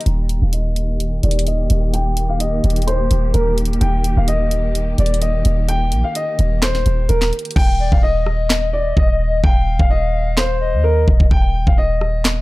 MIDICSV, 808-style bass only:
0, 0, Header, 1, 2, 480
1, 0, Start_track
1, 0, Key_signature, -3, "major"
1, 0, Tempo, 468750
1, 62, Time_signature, 4, 2, 24, 8
1, 12713, End_track
2, 0, Start_track
2, 0, Title_t, "808-style bass"
2, 0, Program_c, 0, 38
2, 63, Note_on_c, 0, 27, 112
2, 415, Note_off_c, 0, 27, 0
2, 430, Note_on_c, 0, 27, 98
2, 1230, Note_off_c, 0, 27, 0
2, 1263, Note_on_c, 0, 27, 101
2, 1723, Note_off_c, 0, 27, 0
2, 1742, Note_on_c, 0, 27, 105
2, 2664, Note_off_c, 0, 27, 0
2, 2702, Note_on_c, 0, 27, 102
2, 3163, Note_off_c, 0, 27, 0
2, 3182, Note_on_c, 0, 27, 101
2, 3413, Note_off_c, 0, 27, 0
2, 3422, Note_on_c, 0, 27, 106
2, 3883, Note_off_c, 0, 27, 0
2, 3902, Note_on_c, 0, 27, 113
2, 4255, Note_off_c, 0, 27, 0
2, 4269, Note_on_c, 0, 27, 101
2, 5069, Note_off_c, 0, 27, 0
2, 5102, Note_on_c, 0, 27, 99
2, 5563, Note_off_c, 0, 27, 0
2, 5582, Note_on_c, 0, 27, 107
2, 6062, Note_on_c, 0, 34, 94
2, 6078, Note_off_c, 0, 27, 0
2, 6183, Note_off_c, 0, 34, 0
2, 6543, Note_on_c, 0, 27, 101
2, 7004, Note_off_c, 0, 27, 0
2, 7023, Note_on_c, 0, 27, 102
2, 7253, Note_off_c, 0, 27, 0
2, 7263, Note_on_c, 0, 27, 106
2, 7493, Note_off_c, 0, 27, 0
2, 7743, Note_on_c, 0, 27, 110
2, 8095, Note_off_c, 0, 27, 0
2, 8110, Note_on_c, 0, 27, 104
2, 9142, Note_off_c, 0, 27, 0
2, 9183, Note_on_c, 0, 27, 109
2, 9644, Note_off_c, 0, 27, 0
2, 9663, Note_on_c, 0, 27, 110
2, 10015, Note_off_c, 0, 27, 0
2, 10030, Note_on_c, 0, 27, 107
2, 10989, Note_on_c, 0, 39, 99
2, 11005, Note_off_c, 0, 27, 0
2, 11325, Note_off_c, 0, 39, 0
2, 11343, Note_on_c, 0, 27, 104
2, 11463, Note_off_c, 0, 27, 0
2, 11469, Note_on_c, 0, 27, 97
2, 11578, Note_off_c, 0, 27, 0
2, 11582, Note_on_c, 0, 27, 109
2, 11935, Note_off_c, 0, 27, 0
2, 11950, Note_on_c, 0, 27, 100
2, 12713, Note_off_c, 0, 27, 0
2, 12713, End_track
0, 0, End_of_file